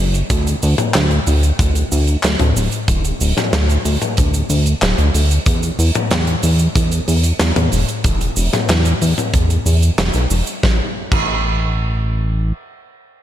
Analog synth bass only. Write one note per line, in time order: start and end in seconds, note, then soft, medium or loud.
0.00 0.23 F#1 medium
0.30 0.55 D2 loud
0.63 0.75 D2 loud
0.95 1.20 D2 loud
1.27 1.52 D2 medium
1.59 1.84 D2 medium
1.92 2.17 D2 medium
2.24 2.36 D2 medium
2.40 2.53 D2 medium
2.56 2.69 D1 medium
2.88 3.13 D1 medium
3.21 3.33 D1 loud
3.53 3.78 D2 loud
3.85 3.98 D2 loud
4.18 4.43 D2 medium
4.50 4.75 D2 medium
4.82 4.94 D1 medium
4.98 5.11 D2 medium
5.14 5.39 D2 medium
5.46 5.71 E2 loud
5.79 5.91 E2 loud
6.11 6.36 E2 loud
6.43 6.68 E2 medium
6.76 7.01 E2 medium
7.08 7.33 E2 loud
7.40 7.53 E2 medium
7.56 7.69 E2 medium
7.72 7.85 E1 medium
8.05 8.29 E1 medium
8.37 8.49 E1 loud
8.69 8.94 E2 loud
9.01 9.14 E2 loud
9.34 9.59 E2 medium
9.66 9.91 E2 medium
9.98 10.11 E1 loud
10.14 10.27 B1 medium
10.31 10.43 E1 medium
10.63 10.81 A1 loud
11.12 12.53 A1 loud